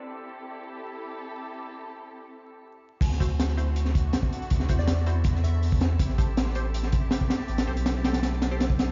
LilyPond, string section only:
\new Staff \with { instrumentName = "String section" } { \time 4/4 \key a \dorian \tempo 4 = 161 << { <c' e' a'>1~ | <c' e' a'>2. r4 | <c' d' fis'>1~ | <c' d' fis'>1 |
<a g'>1~ | <a g'>1 | } \\ { g'1~ | g'2. r4 | e'1~ | e'1~ |
e'1~ | e'1 | } >> }